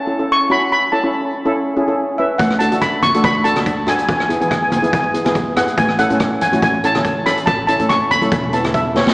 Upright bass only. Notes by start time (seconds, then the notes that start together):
2.39 D2
2.72 D3
3.14 D2
4.09 E2
4.41 E3
4.83 E2
5.77 A1
6.10 A2
6.52 A1
7.47 A1
7.79 A2
8.21 F#1
8.32 E1